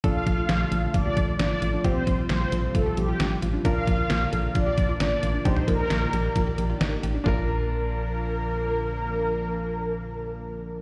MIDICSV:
0, 0, Header, 1, 7, 480
1, 0, Start_track
1, 0, Key_signature, -2, "major"
1, 0, Tempo, 451128
1, 43, Time_signature, 4, 2, 24, 8
1, 11509, End_track
2, 0, Start_track
2, 0, Title_t, "Analog polysynth"
2, 0, Program_c, 0, 90
2, 46, Note_on_c, 0, 77, 116
2, 1006, Note_on_c, 0, 74, 107
2, 1033, Note_off_c, 0, 77, 0
2, 1472, Note_off_c, 0, 74, 0
2, 1485, Note_on_c, 0, 74, 103
2, 1930, Note_off_c, 0, 74, 0
2, 1966, Note_on_c, 0, 72, 97
2, 2433, Note_off_c, 0, 72, 0
2, 2445, Note_on_c, 0, 72, 98
2, 2926, Note_on_c, 0, 69, 91
2, 2938, Note_off_c, 0, 72, 0
2, 3165, Note_on_c, 0, 67, 83
2, 3171, Note_off_c, 0, 69, 0
2, 3610, Note_off_c, 0, 67, 0
2, 3888, Note_on_c, 0, 77, 116
2, 4844, Note_on_c, 0, 74, 109
2, 4874, Note_off_c, 0, 77, 0
2, 5310, Note_off_c, 0, 74, 0
2, 5323, Note_on_c, 0, 74, 103
2, 5802, Note_on_c, 0, 72, 91
2, 5817, Note_off_c, 0, 74, 0
2, 6044, Note_on_c, 0, 70, 96
2, 6050, Note_off_c, 0, 72, 0
2, 7441, Note_off_c, 0, 70, 0
2, 7723, Note_on_c, 0, 70, 103
2, 11509, Note_off_c, 0, 70, 0
2, 11509, End_track
3, 0, Start_track
3, 0, Title_t, "Grand piano"
3, 0, Program_c, 1, 0
3, 41, Note_on_c, 1, 62, 63
3, 41, Note_on_c, 1, 65, 61
3, 41, Note_on_c, 1, 69, 75
3, 1924, Note_off_c, 1, 62, 0
3, 1924, Note_off_c, 1, 65, 0
3, 1924, Note_off_c, 1, 69, 0
3, 1962, Note_on_c, 1, 60, 66
3, 1962, Note_on_c, 1, 65, 64
3, 1963, Note_on_c, 1, 67, 75
3, 3844, Note_off_c, 1, 60, 0
3, 3844, Note_off_c, 1, 65, 0
3, 3844, Note_off_c, 1, 67, 0
3, 3882, Note_on_c, 1, 62, 66
3, 3882, Note_on_c, 1, 65, 62
3, 3882, Note_on_c, 1, 70, 78
3, 5764, Note_off_c, 1, 62, 0
3, 5764, Note_off_c, 1, 65, 0
3, 5764, Note_off_c, 1, 70, 0
3, 5802, Note_on_c, 1, 62, 70
3, 5802, Note_on_c, 1, 63, 60
3, 5802, Note_on_c, 1, 67, 76
3, 7684, Note_off_c, 1, 62, 0
3, 7684, Note_off_c, 1, 63, 0
3, 7684, Note_off_c, 1, 67, 0
3, 7702, Note_on_c, 1, 62, 84
3, 7724, Note_on_c, 1, 65, 80
3, 7745, Note_on_c, 1, 70, 95
3, 11509, Note_off_c, 1, 62, 0
3, 11509, Note_off_c, 1, 65, 0
3, 11509, Note_off_c, 1, 70, 0
3, 11509, End_track
4, 0, Start_track
4, 0, Title_t, "Synth pluck"
4, 0, Program_c, 2, 84
4, 43, Note_on_c, 2, 62, 94
4, 253, Note_off_c, 2, 62, 0
4, 283, Note_on_c, 2, 65, 77
4, 388, Note_off_c, 2, 65, 0
4, 402, Note_on_c, 2, 65, 78
4, 613, Note_off_c, 2, 65, 0
4, 643, Note_on_c, 2, 67, 78
4, 748, Note_off_c, 2, 67, 0
4, 762, Note_on_c, 2, 69, 82
4, 973, Note_off_c, 2, 69, 0
4, 1002, Note_on_c, 2, 65, 89
4, 1108, Note_off_c, 2, 65, 0
4, 1123, Note_on_c, 2, 67, 76
4, 1333, Note_off_c, 2, 67, 0
4, 1362, Note_on_c, 2, 65, 77
4, 1467, Note_off_c, 2, 65, 0
4, 1481, Note_on_c, 2, 62, 83
4, 1692, Note_off_c, 2, 62, 0
4, 1722, Note_on_c, 2, 65, 81
4, 1828, Note_off_c, 2, 65, 0
4, 1842, Note_on_c, 2, 62, 74
4, 1948, Note_off_c, 2, 62, 0
4, 1963, Note_on_c, 2, 60, 95
4, 2173, Note_off_c, 2, 60, 0
4, 2202, Note_on_c, 2, 65, 79
4, 2307, Note_off_c, 2, 65, 0
4, 2323, Note_on_c, 2, 65, 75
4, 2533, Note_off_c, 2, 65, 0
4, 2561, Note_on_c, 2, 67, 73
4, 2667, Note_off_c, 2, 67, 0
4, 2683, Note_on_c, 2, 69, 85
4, 2893, Note_off_c, 2, 69, 0
4, 2922, Note_on_c, 2, 65, 92
4, 3028, Note_off_c, 2, 65, 0
4, 3042, Note_on_c, 2, 67, 75
4, 3253, Note_off_c, 2, 67, 0
4, 3283, Note_on_c, 2, 65, 75
4, 3388, Note_off_c, 2, 65, 0
4, 3402, Note_on_c, 2, 62, 86
4, 3613, Note_off_c, 2, 62, 0
4, 3643, Note_on_c, 2, 65, 85
4, 3748, Note_off_c, 2, 65, 0
4, 3762, Note_on_c, 2, 62, 76
4, 3868, Note_off_c, 2, 62, 0
4, 3882, Note_on_c, 2, 62, 96
4, 4093, Note_off_c, 2, 62, 0
4, 4122, Note_on_c, 2, 65, 78
4, 4228, Note_off_c, 2, 65, 0
4, 4242, Note_on_c, 2, 65, 77
4, 4453, Note_off_c, 2, 65, 0
4, 4483, Note_on_c, 2, 67, 76
4, 4588, Note_off_c, 2, 67, 0
4, 4603, Note_on_c, 2, 69, 82
4, 4813, Note_off_c, 2, 69, 0
4, 4843, Note_on_c, 2, 65, 91
4, 4948, Note_off_c, 2, 65, 0
4, 4963, Note_on_c, 2, 67, 79
4, 5173, Note_off_c, 2, 67, 0
4, 5203, Note_on_c, 2, 65, 77
4, 5308, Note_off_c, 2, 65, 0
4, 5322, Note_on_c, 2, 62, 86
4, 5533, Note_off_c, 2, 62, 0
4, 5563, Note_on_c, 2, 65, 83
4, 5668, Note_off_c, 2, 65, 0
4, 5682, Note_on_c, 2, 62, 73
4, 5788, Note_off_c, 2, 62, 0
4, 5802, Note_on_c, 2, 62, 94
4, 6013, Note_off_c, 2, 62, 0
4, 6043, Note_on_c, 2, 65, 79
4, 6148, Note_off_c, 2, 65, 0
4, 6162, Note_on_c, 2, 63, 77
4, 6373, Note_off_c, 2, 63, 0
4, 6403, Note_on_c, 2, 65, 74
4, 6508, Note_off_c, 2, 65, 0
4, 6523, Note_on_c, 2, 67, 82
4, 6733, Note_off_c, 2, 67, 0
4, 6762, Note_on_c, 2, 65, 90
4, 6868, Note_off_c, 2, 65, 0
4, 6883, Note_on_c, 2, 67, 79
4, 7093, Note_off_c, 2, 67, 0
4, 7123, Note_on_c, 2, 65, 79
4, 7228, Note_off_c, 2, 65, 0
4, 7244, Note_on_c, 2, 63, 87
4, 7454, Note_off_c, 2, 63, 0
4, 7483, Note_on_c, 2, 67, 83
4, 7588, Note_off_c, 2, 67, 0
4, 7603, Note_on_c, 2, 62, 77
4, 7708, Note_off_c, 2, 62, 0
4, 7723, Note_on_c, 2, 58, 74
4, 7766, Note_on_c, 2, 62, 75
4, 7809, Note_on_c, 2, 65, 73
4, 7851, Note_on_c, 2, 70, 71
4, 11509, Note_off_c, 2, 58, 0
4, 11509, Note_off_c, 2, 62, 0
4, 11509, Note_off_c, 2, 65, 0
4, 11509, Note_off_c, 2, 70, 0
4, 11509, End_track
5, 0, Start_track
5, 0, Title_t, "String machine"
5, 0, Program_c, 3, 50
5, 43, Note_on_c, 3, 50, 77
5, 43, Note_on_c, 3, 53, 69
5, 43, Note_on_c, 3, 65, 85
5, 44, Note_on_c, 3, 57, 70
5, 1944, Note_off_c, 3, 50, 0
5, 1944, Note_off_c, 3, 57, 0
5, 1963, Note_on_c, 3, 55, 74
5, 1964, Note_on_c, 3, 48, 77
5, 3844, Note_off_c, 3, 65, 0
5, 3864, Note_off_c, 3, 48, 0
5, 3864, Note_off_c, 3, 55, 0
5, 3883, Note_on_c, 3, 50, 80
5, 3884, Note_on_c, 3, 65, 86
5, 3885, Note_on_c, 3, 58, 70
5, 5761, Note_off_c, 3, 53, 0
5, 5784, Note_off_c, 3, 50, 0
5, 5784, Note_off_c, 3, 65, 0
5, 5801, Note_on_c, 3, 51, 78
5, 5802, Note_on_c, 3, 67, 88
5, 5802, Note_on_c, 3, 74, 73
5, 7685, Note_off_c, 3, 58, 0
5, 7703, Note_off_c, 3, 51, 0
5, 7703, Note_off_c, 3, 67, 0
5, 7703, Note_off_c, 3, 74, 0
5, 7721, Note_on_c, 3, 53, 80
5, 7722, Note_on_c, 3, 58, 72
5, 7722, Note_on_c, 3, 62, 73
5, 7722, Note_on_c, 3, 70, 88
5, 11509, Note_off_c, 3, 53, 0
5, 11509, Note_off_c, 3, 58, 0
5, 11509, Note_off_c, 3, 62, 0
5, 11509, Note_off_c, 3, 70, 0
5, 11509, End_track
6, 0, Start_track
6, 0, Title_t, "FM bass"
6, 0, Program_c, 4, 39
6, 43, Note_on_c, 4, 34, 104
6, 211, Note_off_c, 4, 34, 0
6, 283, Note_on_c, 4, 34, 98
6, 451, Note_off_c, 4, 34, 0
6, 522, Note_on_c, 4, 34, 104
6, 690, Note_off_c, 4, 34, 0
6, 762, Note_on_c, 4, 34, 102
6, 930, Note_off_c, 4, 34, 0
6, 1004, Note_on_c, 4, 34, 106
6, 1171, Note_off_c, 4, 34, 0
6, 1244, Note_on_c, 4, 34, 103
6, 1412, Note_off_c, 4, 34, 0
6, 1482, Note_on_c, 4, 33, 92
6, 1650, Note_off_c, 4, 33, 0
6, 1722, Note_on_c, 4, 33, 94
6, 1890, Note_off_c, 4, 33, 0
6, 1963, Note_on_c, 4, 34, 115
6, 2131, Note_off_c, 4, 34, 0
6, 2202, Note_on_c, 4, 34, 100
6, 2370, Note_off_c, 4, 34, 0
6, 2443, Note_on_c, 4, 34, 105
6, 2611, Note_off_c, 4, 34, 0
6, 2683, Note_on_c, 4, 34, 95
6, 2851, Note_off_c, 4, 34, 0
6, 2924, Note_on_c, 4, 34, 108
6, 3092, Note_off_c, 4, 34, 0
6, 3164, Note_on_c, 4, 34, 104
6, 3332, Note_off_c, 4, 34, 0
6, 3404, Note_on_c, 4, 33, 97
6, 3572, Note_off_c, 4, 33, 0
6, 3644, Note_on_c, 4, 33, 90
6, 3812, Note_off_c, 4, 33, 0
6, 3883, Note_on_c, 4, 34, 101
6, 4051, Note_off_c, 4, 34, 0
6, 4122, Note_on_c, 4, 34, 101
6, 4290, Note_off_c, 4, 34, 0
6, 4364, Note_on_c, 4, 34, 101
6, 4531, Note_off_c, 4, 34, 0
6, 4605, Note_on_c, 4, 34, 110
6, 4772, Note_off_c, 4, 34, 0
6, 4844, Note_on_c, 4, 34, 110
6, 5011, Note_off_c, 4, 34, 0
6, 5084, Note_on_c, 4, 34, 99
6, 5252, Note_off_c, 4, 34, 0
6, 5324, Note_on_c, 4, 33, 93
6, 5492, Note_off_c, 4, 33, 0
6, 5564, Note_on_c, 4, 33, 93
6, 5732, Note_off_c, 4, 33, 0
6, 5802, Note_on_c, 4, 34, 111
6, 5970, Note_off_c, 4, 34, 0
6, 6042, Note_on_c, 4, 34, 108
6, 6211, Note_off_c, 4, 34, 0
6, 6283, Note_on_c, 4, 34, 101
6, 6451, Note_off_c, 4, 34, 0
6, 6523, Note_on_c, 4, 34, 100
6, 6691, Note_off_c, 4, 34, 0
6, 6764, Note_on_c, 4, 34, 106
6, 6932, Note_off_c, 4, 34, 0
6, 7003, Note_on_c, 4, 34, 97
6, 7171, Note_off_c, 4, 34, 0
6, 7243, Note_on_c, 4, 33, 94
6, 7411, Note_off_c, 4, 33, 0
6, 7484, Note_on_c, 4, 33, 90
6, 7652, Note_off_c, 4, 33, 0
6, 7723, Note_on_c, 4, 34, 105
6, 11509, Note_off_c, 4, 34, 0
6, 11509, End_track
7, 0, Start_track
7, 0, Title_t, "Drums"
7, 42, Note_on_c, 9, 42, 69
7, 43, Note_on_c, 9, 36, 116
7, 149, Note_off_c, 9, 36, 0
7, 149, Note_off_c, 9, 42, 0
7, 283, Note_on_c, 9, 36, 89
7, 283, Note_on_c, 9, 42, 67
7, 389, Note_off_c, 9, 36, 0
7, 390, Note_off_c, 9, 42, 0
7, 521, Note_on_c, 9, 38, 121
7, 524, Note_on_c, 9, 42, 62
7, 627, Note_off_c, 9, 38, 0
7, 631, Note_off_c, 9, 42, 0
7, 763, Note_on_c, 9, 42, 76
7, 870, Note_off_c, 9, 42, 0
7, 1002, Note_on_c, 9, 42, 75
7, 1004, Note_on_c, 9, 36, 96
7, 1109, Note_off_c, 9, 42, 0
7, 1110, Note_off_c, 9, 36, 0
7, 1242, Note_on_c, 9, 42, 67
7, 1244, Note_on_c, 9, 36, 96
7, 1349, Note_off_c, 9, 42, 0
7, 1351, Note_off_c, 9, 36, 0
7, 1484, Note_on_c, 9, 38, 109
7, 1484, Note_on_c, 9, 42, 77
7, 1590, Note_off_c, 9, 42, 0
7, 1591, Note_off_c, 9, 38, 0
7, 1724, Note_on_c, 9, 42, 72
7, 1831, Note_off_c, 9, 42, 0
7, 1963, Note_on_c, 9, 36, 114
7, 1963, Note_on_c, 9, 42, 70
7, 2069, Note_off_c, 9, 36, 0
7, 2069, Note_off_c, 9, 42, 0
7, 2203, Note_on_c, 9, 36, 89
7, 2203, Note_on_c, 9, 42, 69
7, 2309, Note_off_c, 9, 36, 0
7, 2310, Note_off_c, 9, 42, 0
7, 2440, Note_on_c, 9, 38, 122
7, 2444, Note_on_c, 9, 42, 61
7, 2547, Note_off_c, 9, 38, 0
7, 2550, Note_off_c, 9, 42, 0
7, 2684, Note_on_c, 9, 42, 78
7, 2790, Note_off_c, 9, 42, 0
7, 2924, Note_on_c, 9, 36, 98
7, 2924, Note_on_c, 9, 42, 73
7, 3030, Note_off_c, 9, 36, 0
7, 3030, Note_off_c, 9, 42, 0
7, 3164, Note_on_c, 9, 42, 68
7, 3270, Note_off_c, 9, 42, 0
7, 3403, Note_on_c, 9, 42, 79
7, 3404, Note_on_c, 9, 38, 114
7, 3509, Note_off_c, 9, 42, 0
7, 3510, Note_off_c, 9, 38, 0
7, 3643, Note_on_c, 9, 42, 73
7, 3750, Note_off_c, 9, 42, 0
7, 3883, Note_on_c, 9, 36, 117
7, 3883, Note_on_c, 9, 42, 72
7, 3989, Note_off_c, 9, 36, 0
7, 3989, Note_off_c, 9, 42, 0
7, 4122, Note_on_c, 9, 36, 92
7, 4122, Note_on_c, 9, 42, 69
7, 4229, Note_off_c, 9, 36, 0
7, 4229, Note_off_c, 9, 42, 0
7, 4361, Note_on_c, 9, 38, 123
7, 4364, Note_on_c, 9, 42, 62
7, 4467, Note_off_c, 9, 38, 0
7, 4470, Note_off_c, 9, 42, 0
7, 4604, Note_on_c, 9, 42, 77
7, 4710, Note_off_c, 9, 42, 0
7, 4842, Note_on_c, 9, 42, 72
7, 4844, Note_on_c, 9, 36, 96
7, 4949, Note_off_c, 9, 42, 0
7, 4950, Note_off_c, 9, 36, 0
7, 5082, Note_on_c, 9, 42, 70
7, 5084, Note_on_c, 9, 36, 91
7, 5188, Note_off_c, 9, 42, 0
7, 5190, Note_off_c, 9, 36, 0
7, 5322, Note_on_c, 9, 42, 79
7, 5323, Note_on_c, 9, 38, 114
7, 5429, Note_off_c, 9, 38, 0
7, 5429, Note_off_c, 9, 42, 0
7, 5564, Note_on_c, 9, 42, 73
7, 5670, Note_off_c, 9, 42, 0
7, 5802, Note_on_c, 9, 36, 121
7, 5802, Note_on_c, 9, 42, 70
7, 5908, Note_off_c, 9, 42, 0
7, 5909, Note_off_c, 9, 36, 0
7, 5921, Note_on_c, 9, 45, 90
7, 6028, Note_off_c, 9, 45, 0
7, 6040, Note_on_c, 9, 56, 69
7, 6042, Note_on_c, 9, 36, 89
7, 6043, Note_on_c, 9, 42, 71
7, 6147, Note_off_c, 9, 56, 0
7, 6149, Note_off_c, 9, 36, 0
7, 6150, Note_off_c, 9, 42, 0
7, 6281, Note_on_c, 9, 38, 122
7, 6285, Note_on_c, 9, 42, 64
7, 6388, Note_off_c, 9, 38, 0
7, 6391, Note_off_c, 9, 42, 0
7, 6524, Note_on_c, 9, 42, 78
7, 6630, Note_off_c, 9, 42, 0
7, 6763, Note_on_c, 9, 42, 75
7, 6764, Note_on_c, 9, 36, 98
7, 6869, Note_off_c, 9, 42, 0
7, 6871, Note_off_c, 9, 36, 0
7, 7003, Note_on_c, 9, 42, 69
7, 7109, Note_off_c, 9, 42, 0
7, 7244, Note_on_c, 9, 38, 112
7, 7244, Note_on_c, 9, 42, 80
7, 7350, Note_off_c, 9, 42, 0
7, 7351, Note_off_c, 9, 38, 0
7, 7484, Note_on_c, 9, 42, 73
7, 7591, Note_off_c, 9, 42, 0
7, 7723, Note_on_c, 9, 36, 105
7, 7724, Note_on_c, 9, 43, 101
7, 7830, Note_off_c, 9, 36, 0
7, 7830, Note_off_c, 9, 43, 0
7, 11509, End_track
0, 0, End_of_file